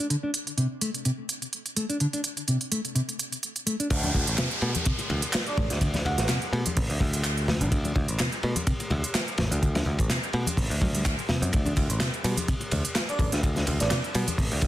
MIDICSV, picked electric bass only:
0, 0, Header, 1, 2, 480
1, 0, Start_track
1, 0, Tempo, 476190
1, 101, Time_signature, 4, 2, 24, 8
1, 14789, End_track
2, 0, Start_track
2, 0, Title_t, "Picked electric bass"
2, 0, Program_c, 0, 34
2, 3937, Note_on_c, 0, 38, 95
2, 4135, Note_off_c, 0, 38, 0
2, 4176, Note_on_c, 0, 38, 80
2, 4283, Note_off_c, 0, 38, 0
2, 4310, Note_on_c, 0, 33, 83
2, 4398, Note_off_c, 0, 33, 0
2, 4658, Note_on_c, 0, 47, 98
2, 4764, Note_off_c, 0, 47, 0
2, 5140, Note_on_c, 0, 38, 94
2, 5245, Note_off_c, 0, 38, 0
2, 5619, Note_on_c, 0, 33, 84
2, 5724, Note_off_c, 0, 33, 0
2, 5749, Note_on_c, 0, 38, 90
2, 6064, Note_off_c, 0, 38, 0
2, 6099, Note_on_c, 0, 38, 79
2, 6204, Note_off_c, 0, 38, 0
2, 6232, Note_on_c, 0, 33, 86
2, 6319, Note_off_c, 0, 33, 0
2, 6578, Note_on_c, 0, 47, 101
2, 6684, Note_off_c, 0, 47, 0
2, 6825, Note_on_c, 0, 33, 97
2, 6927, Note_off_c, 0, 33, 0
2, 6953, Note_on_c, 0, 38, 106
2, 7039, Note_off_c, 0, 38, 0
2, 7058, Note_on_c, 0, 38, 91
2, 7670, Note_on_c, 0, 33, 104
2, 7686, Note_off_c, 0, 38, 0
2, 7758, Note_off_c, 0, 33, 0
2, 7779, Note_on_c, 0, 38, 101
2, 7976, Note_off_c, 0, 38, 0
2, 8019, Note_on_c, 0, 38, 84
2, 8125, Note_off_c, 0, 38, 0
2, 8154, Note_on_c, 0, 33, 85
2, 8240, Note_off_c, 0, 33, 0
2, 8504, Note_on_c, 0, 47, 100
2, 8607, Note_off_c, 0, 47, 0
2, 8982, Note_on_c, 0, 38, 97
2, 9086, Note_off_c, 0, 38, 0
2, 9461, Note_on_c, 0, 33, 84
2, 9565, Note_off_c, 0, 33, 0
2, 9590, Note_on_c, 0, 38, 90
2, 9905, Note_off_c, 0, 38, 0
2, 9940, Note_on_c, 0, 38, 83
2, 10045, Note_off_c, 0, 38, 0
2, 10073, Note_on_c, 0, 33, 84
2, 10159, Note_off_c, 0, 33, 0
2, 10421, Note_on_c, 0, 47, 99
2, 10525, Note_off_c, 0, 47, 0
2, 10656, Note_on_c, 0, 33, 95
2, 10763, Note_off_c, 0, 33, 0
2, 10788, Note_on_c, 0, 38, 101
2, 10877, Note_off_c, 0, 38, 0
2, 10902, Note_on_c, 0, 38, 90
2, 11230, Note_off_c, 0, 38, 0
2, 11511, Note_on_c, 0, 42, 93
2, 11598, Note_off_c, 0, 42, 0
2, 11632, Note_on_c, 0, 38, 97
2, 11822, Note_off_c, 0, 38, 0
2, 11861, Note_on_c, 0, 38, 82
2, 11966, Note_off_c, 0, 38, 0
2, 11993, Note_on_c, 0, 33, 82
2, 12079, Note_off_c, 0, 33, 0
2, 12342, Note_on_c, 0, 47, 99
2, 12446, Note_off_c, 0, 47, 0
2, 12822, Note_on_c, 0, 38, 100
2, 12926, Note_off_c, 0, 38, 0
2, 13296, Note_on_c, 0, 33, 82
2, 13403, Note_off_c, 0, 33, 0
2, 13436, Note_on_c, 0, 38, 89
2, 13748, Note_off_c, 0, 38, 0
2, 13784, Note_on_c, 0, 38, 83
2, 13887, Note_off_c, 0, 38, 0
2, 13918, Note_on_c, 0, 33, 84
2, 14002, Note_off_c, 0, 33, 0
2, 14264, Note_on_c, 0, 47, 99
2, 14367, Note_off_c, 0, 47, 0
2, 14496, Note_on_c, 0, 33, 98
2, 14603, Note_off_c, 0, 33, 0
2, 14634, Note_on_c, 0, 38, 102
2, 14720, Note_off_c, 0, 38, 0
2, 14737, Note_on_c, 0, 38, 87
2, 14789, Note_off_c, 0, 38, 0
2, 14789, End_track
0, 0, End_of_file